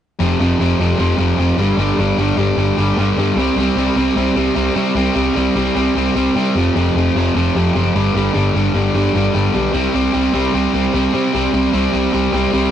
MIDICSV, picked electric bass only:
0, 0, Header, 1, 2, 480
1, 0, Start_track
1, 0, Tempo, 397614
1, 241, Time_signature, 4, 2, 24, 8
1, 15346, End_track
2, 0, Start_track
2, 0, Title_t, "Picked electric bass"
2, 0, Program_c, 0, 34
2, 248, Note_on_c, 0, 29, 91
2, 396, Note_off_c, 0, 29, 0
2, 482, Note_on_c, 0, 29, 83
2, 632, Note_off_c, 0, 29, 0
2, 725, Note_on_c, 0, 29, 81
2, 874, Note_off_c, 0, 29, 0
2, 959, Note_on_c, 0, 29, 81
2, 1109, Note_off_c, 0, 29, 0
2, 1200, Note_on_c, 0, 29, 82
2, 1350, Note_off_c, 0, 29, 0
2, 1434, Note_on_c, 0, 29, 74
2, 1585, Note_off_c, 0, 29, 0
2, 1670, Note_on_c, 0, 29, 82
2, 1823, Note_off_c, 0, 29, 0
2, 1905, Note_on_c, 0, 31, 82
2, 2059, Note_off_c, 0, 31, 0
2, 2143, Note_on_c, 0, 31, 95
2, 2297, Note_off_c, 0, 31, 0
2, 2392, Note_on_c, 0, 31, 88
2, 2543, Note_off_c, 0, 31, 0
2, 2627, Note_on_c, 0, 31, 85
2, 2780, Note_off_c, 0, 31, 0
2, 2858, Note_on_c, 0, 31, 77
2, 3014, Note_off_c, 0, 31, 0
2, 3100, Note_on_c, 0, 31, 84
2, 3254, Note_off_c, 0, 31, 0
2, 3352, Note_on_c, 0, 31, 76
2, 3502, Note_off_c, 0, 31, 0
2, 3591, Note_on_c, 0, 31, 85
2, 3742, Note_off_c, 0, 31, 0
2, 3826, Note_on_c, 0, 43, 75
2, 3978, Note_off_c, 0, 43, 0
2, 4054, Note_on_c, 0, 36, 99
2, 4210, Note_off_c, 0, 36, 0
2, 4298, Note_on_c, 0, 36, 82
2, 4452, Note_off_c, 0, 36, 0
2, 4536, Note_on_c, 0, 36, 79
2, 4691, Note_off_c, 0, 36, 0
2, 4780, Note_on_c, 0, 36, 79
2, 4934, Note_off_c, 0, 36, 0
2, 5021, Note_on_c, 0, 36, 85
2, 5174, Note_off_c, 0, 36, 0
2, 5266, Note_on_c, 0, 36, 91
2, 5418, Note_off_c, 0, 36, 0
2, 5503, Note_on_c, 0, 36, 81
2, 5656, Note_off_c, 0, 36, 0
2, 5738, Note_on_c, 0, 48, 78
2, 5893, Note_off_c, 0, 48, 0
2, 5976, Note_on_c, 0, 36, 95
2, 6131, Note_off_c, 0, 36, 0
2, 6225, Note_on_c, 0, 36, 86
2, 6378, Note_off_c, 0, 36, 0
2, 6464, Note_on_c, 0, 36, 78
2, 6617, Note_off_c, 0, 36, 0
2, 6708, Note_on_c, 0, 36, 84
2, 6860, Note_off_c, 0, 36, 0
2, 6946, Note_on_c, 0, 36, 80
2, 7099, Note_off_c, 0, 36, 0
2, 7185, Note_on_c, 0, 36, 83
2, 7338, Note_off_c, 0, 36, 0
2, 7432, Note_on_c, 0, 36, 80
2, 7583, Note_off_c, 0, 36, 0
2, 7674, Note_on_c, 0, 48, 84
2, 7824, Note_off_c, 0, 48, 0
2, 7912, Note_on_c, 0, 29, 88
2, 8064, Note_off_c, 0, 29, 0
2, 8156, Note_on_c, 0, 29, 84
2, 8307, Note_off_c, 0, 29, 0
2, 8392, Note_on_c, 0, 29, 89
2, 8544, Note_off_c, 0, 29, 0
2, 8637, Note_on_c, 0, 29, 86
2, 8787, Note_off_c, 0, 29, 0
2, 8877, Note_on_c, 0, 29, 83
2, 9028, Note_off_c, 0, 29, 0
2, 9120, Note_on_c, 0, 29, 81
2, 9270, Note_off_c, 0, 29, 0
2, 9358, Note_on_c, 0, 30, 84
2, 9509, Note_off_c, 0, 30, 0
2, 9595, Note_on_c, 0, 31, 81
2, 9747, Note_off_c, 0, 31, 0
2, 9828, Note_on_c, 0, 31, 98
2, 9983, Note_off_c, 0, 31, 0
2, 10087, Note_on_c, 0, 31, 86
2, 10235, Note_off_c, 0, 31, 0
2, 10314, Note_on_c, 0, 31, 87
2, 10467, Note_off_c, 0, 31, 0
2, 10553, Note_on_c, 0, 31, 87
2, 10706, Note_off_c, 0, 31, 0
2, 10787, Note_on_c, 0, 31, 79
2, 10943, Note_off_c, 0, 31, 0
2, 11043, Note_on_c, 0, 31, 87
2, 11194, Note_off_c, 0, 31, 0
2, 11283, Note_on_c, 0, 31, 88
2, 11434, Note_off_c, 0, 31, 0
2, 11526, Note_on_c, 0, 35, 81
2, 11676, Note_off_c, 0, 35, 0
2, 11759, Note_on_c, 0, 36, 101
2, 11912, Note_off_c, 0, 36, 0
2, 12005, Note_on_c, 0, 36, 85
2, 12156, Note_off_c, 0, 36, 0
2, 12247, Note_on_c, 0, 36, 78
2, 12398, Note_off_c, 0, 36, 0
2, 12479, Note_on_c, 0, 36, 91
2, 12632, Note_off_c, 0, 36, 0
2, 12724, Note_on_c, 0, 36, 77
2, 12875, Note_off_c, 0, 36, 0
2, 12964, Note_on_c, 0, 36, 82
2, 13116, Note_off_c, 0, 36, 0
2, 13209, Note_on_c, 0, 36, 94
2, 13359, Note_off_c, 0, 36, 0
2, 13451, Note_on_c, 0, 48, 83
2, 13601, Note_off_c, 0, 48, 0
2, 13698, Note_on_c, 0, 36, 91
2, 13845, Note_off_c, 0, 36, 0
2, 13926, Note_on_c, 0, 36, 92
2, 14077, Note_off_c, 0, 36, 0
2, 14164, Note_on_c, 0, 36, 92
2, 14315, Note_off_c, 0, 36, 0
2, 14413, Note_on_c, 0, 36, 83
2, 14561, Note_off_c, 0, 36, 0
2, 14660, Note_on_c, 0, 36, 78
2, 14806, Note_off_c, 0, 36, 0
2, 14882, Note_on_c, 0, 36, 82
2, 15034, Note_off_c, 0, 36, 0
2, 15132, Note_on_c, 0, 36, 86
2, 15280, Note_off_c, 0, 36, 0
2, 15346, End_track
0, 0, End_of_file